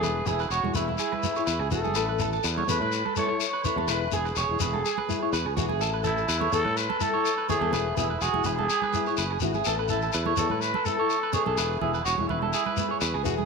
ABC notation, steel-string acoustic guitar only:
X:1
M:4/4
L:1/16
Q:1/4=125
K:A
V:1 name="Steel-string acoustic guitar"
[B,EG] z [B,EG] z2 [EG] [B,EG] z3 [B,EG] [EG] z2 [B,EG] z | [B,EA] z [B,EA] z2 [EA] [B,EA] z3 [B,EA] [EA] z2 [B,EA] z | [B,EG] z [B,EG] z2 E [B,EG] z3 [B,EG] [EG] z2 [B,EG] z | [EA] z [B,EA] z2 A [B,EA] z3 [B,EA] [EA] z2 [B,EA] z |
[B,EG] z [B,EG] z2 [EG] [B,EG] z3 [B,EG] [EG] z2 [B,EG] z | [B,EA] z [B,EA] z2 [EA] [B,EA] z3 [B,EA] [EA] z2 [B,EA] z | [B,EG] z [B,EG] z2 [EG] [B,EG] z3 [B,EG] G z2 [B,EG] z |]